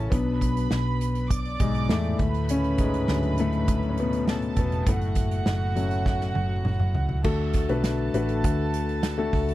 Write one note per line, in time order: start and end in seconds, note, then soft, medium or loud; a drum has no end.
0.00 0.10 C#3 medium
0.00 0.14 E3 medium
0.00 0.14 C#4 medium
0.00 0.14 E4 medium
0.00 0.10 A4 medium
0.10 0.67 B1 loud
0.10 1.27 B2 medium
0.10 0.97 F#3 soft
0.10 0.97 B3 medium
0.10 0.97 D4 medium
0.10 1.28 B4 medium
0.10 1.28 B5 medium
0.10 kick loud
0.10 closed hi-hat medium
0.41 kick medium
0.41 closed hi-hat medium
0.57 closed hi-hat soft
0.71 1.56 B1 medium
0.71 snare loud
1.01 closed hi-hat medium
1.15 closed hi-hat soft
1.29 2.17 D5 medium
1.29 2.17 D6 medium
1.29 kick medium
1.29 closed hi-hat medium
1.45 closed hi-hat soft
1.60 1.88 B1 medium
1.60 1.68 G#2 medium
1.60 1.67 G#3 medium
1.60 kick medium
1.60 closed hi-hat medium
1.75 closed hi-hat soft
1.89 2.18 E2 medium
1.89 2.46 A2 medium
1.89 2.51 A3 medium
1.89 snare loud
2.19 3.05 D2 medium
2.19 4.23 B4 medium
2.19 4.23 B5 medium
2.19 kick medium
2.19 closed hi-hat soft
2.34 closed hi-hat soft
2.49 2.78 C#3 medium
2.49 2.81 C#4 loud
2.49 closed hi-hat medium
2.64 closed hi-hat soft
2.78 3.35 G#2 medium
2.78 3.41 G#3 medium
2.78 kick medium
2.78 closed hi-hat medium
2.94 closed hi-hat soft
3.08 4.54 D2 medium
3.08 4.83 F#3 soft
3.08 3.38 A3 soft
3.08 4.84 D4 medium
3.08 snare loud
3.23 closed hi-hat soft
3.38 3.88 A2 medium
3.38 3.93 A3 medium
3.38 closed hi-hat medium
3.53 closed hi-hat soft
3.68 kick medium
3.68 closed hi-hat medium
3.83 closed hi-hat soft
3.89 3.97 C#4 medium
3.98 4.54 B2 medium
3.98 4.57 B3 medium
3.98 closed hi-hat medium
4.13 closed hi-hat soft
4.28 4.86 A4 medium
4.28 4.86 A5 medium
4.28 snare loud
4.42 closed hi-hat soft
4.56 4.85 E1 medium
4.56 4.66 B2 medium
4.56 4.65 B3 medium
4.56 kick medium
4.56 closed hi-hat soft
4.72 closed hi-hat soft
4.86 5.43 F#1 medium
4.86 6.62 A2 medium
4.86 5.74 A3 medium
4.86 7.21 F#4 medium
4.86 7.21 F#5 medium
4.86 kick loud
4.86 closed hi-hat medium
5.01 closed hi-hat soft
5.15 kick medium
5.15 closed hi-hat medium
5.31 closed hi-hat soft
5.46 6.32 F#1 medium
5.46 snare loud
5.75 6.61 F#3 soft
5.75 6.61 A3 soft
5.75 6.62 C#4 medium
5.75 closed hi-hat medium
5.91 closed hi-hat soft
6.06 kick medium
6.06 snare soft
6.21 snare soft
6.35 6.63 F#1 medium
6.35 high tom medium
6.65 6.93 F#1 medium
6.65 mid tom medium
6.79 mid tom medium
6.95 7.23 C#2 medium
6.95 floor tom medium
7.09 floor tom medium
7.24 7.66 D2 loud
7.24 8.10 D3 medium
7.24 7.59 A3 medium
7.24 7.60 D4 medium
7.24 7.59 F#4 medium
7.24 7.60 A4 medium
7.24 9.54 A4 medium
7.24 9.54 A5 medium
7.24 kick loud
7.24 crash medium
7.53 kick medium
7.53 closed hi-hat medium
7.69 8.11 B1 medium
7.69 8.04 A3 medium
7.69 8.04 D4 medium
7.69 8.04 F#4 medium
7.69 8.04 B4 medium
7.69 closed hi-hat soft
7.84 snare medium
7.84 closed hi-hat medium
8.14 8.44 A1 medium
8.14 8.95 A3 medium
8.14 8.95 D4 medium
8.14 8.95 F#4 medium
8.14 8.95 B4 medium
8.14 closed hi-hat medium
8.29 closed hi-hat soft
8.44 9.29 D2 loud
8.44 kick medium
8.44 closed hi-hat medium
8.74 closed hi-hat medium
8.89 closed hi-hat soft
9.03 snare loud
9.03 closed hi-hat medium
9.18 9.53 A3 medium
9.18 9.53 D4 medium
9.18 9.53 F#4 medium
9.18 9.53 A4 medium
9.33 9.54 C#2 medium
9.33 kick medium
9.33 open hi-hat soft
9.49 closed hi-hat soft